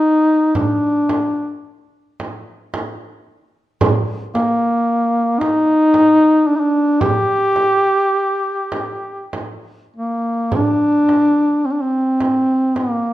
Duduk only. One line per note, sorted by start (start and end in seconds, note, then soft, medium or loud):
0.00 0.55 D#4 medium
0.56 1.61 D4 medium
4.35 5.41 A#3 medium
5.40 6.49 D#4 loud
6.47 6.58 D4 medium
6.56 6.62 D#4 medium
6.60 7.03 D4 medium
7.01 9.32 G4 loud
9.96 10.57 A#3 medium
10.55 11.67 D4 loud
11.65 11.73 C4 medium
11.72 11.82 D4 medium
11.81 12.79 C4 medium
12.77 13.13 A#3 medium